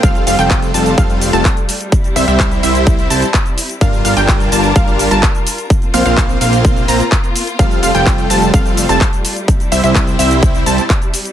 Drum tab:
HH |xxoxxxoxxxoxxxox|xxoxxxoxxxoxxxox|xxoxxxoxxxoxxxox|xxoxxxoxxxoxxxox|
SH |xxxxxxxxxxxxxxxx|xxxxxxxxxxxxxxxx|xxxxxxxxxxxxxxxx|xxxxxxxxxxxxxxxx|
CP |----x-------x---|----x-------x---|----x-------x---|----x-------x---|
BD |o---o---o---o---|o---o---o---o---|o---o---o---o---|o---o---o---o---|

HH |xxoxxxoxxxoxxxox|xxoxxxoxxxoxxxox|
SH |xxxxxxxxxxxxxxxx|xxxxxxxxxxxxxxxx|
CP |----x-------x---|----x-------x---|
BD |o---o---o---o---|o---o---o---o---|